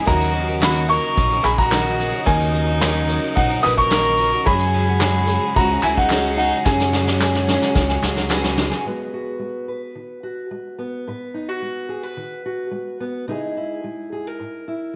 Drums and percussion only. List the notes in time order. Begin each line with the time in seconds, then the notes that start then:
0.07 kick, ride, tambourine
0.21 tambourine
0.35 ride
0.48 tambourine
0.62 snare, clap, ride, tambourine
0.76 tambourine
0.90 ride, tambourine
1.17 kick, ride
1.31 tambourine
1.44 clap, ride, tambourine
1.58 kick
1.72 snare, clap, ride, tambourine
1.86 tambourine
2.00 ride, tambourine
2.14 tambourine
2.27 kick, ride, tambourine
2.40 tambourine
2.55 ride
2.68 tambourine
2.81 snare, clap, ride, tambourine
2.95 tambourine
3.09 ride, tambourine
3.37 kick, ride
3.50 tambourine
3.62 snare, clap, ride, tambourine
3.78 kick
3.91 snare, clap, ride, tambourine
4.04 tambourine
4.18 ride, tambourine
4.32 tambourine
4.46 kick, ride, tambourine
4.59 tambourine
4.74 ride
4.87 tambourine
5.00 snare, clap, ride, tambourine
5.14 tambourine
5.27 ride, tambourine
5.56 kick, ride
5.70 tambourine
5.83 clap, ride, tambourine
5.97 kick
6.09 snare, clap, ride, tambourine
6.24 tambourine
6.38 ride, tambourine
6.53 tambourine
6.65 kick, snare, tambourine
6.80 snare, tambourine
6.93 snare
7.07 snare, tambourine
7.21 snare, clap, tambourine
7.35 snare, tambourine
7.48 snare, tambourine
7.62 snare, tambourine
7.76 kick, snare, tambourine
7.89 snare, tambourine
8.03 snare, clap, tambourine
8.17 snare, tambourine
8.29 snare, clap, tambourine
8.44 snare
8.57 snare, tambourine
8.71 snare, tambourine